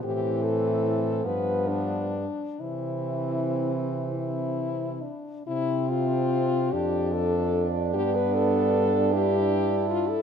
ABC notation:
X:1
M:6/8
L:1/16
Q:3/8=48
K:C
V:1 name="French horn"
G2 A4 B2 D4 | E6 E4 D2 | E2 F4 G2 A4 | G B A4 G4 F A |]
V:2 name="French horn"
C6 B,4 z2 | C8- C2 z2 | z6 D6- | D12 |]
V:3 name="French horn"
E,6 F,4 z2 | E,8- E,2 z2 | C6 D6 | B,6 E6 |]
V:4 name="French horn" clef=bass
A,,6 G,,4 z2 | C,8- C,2 z2 | C,6 F,,6 | G,,12 |]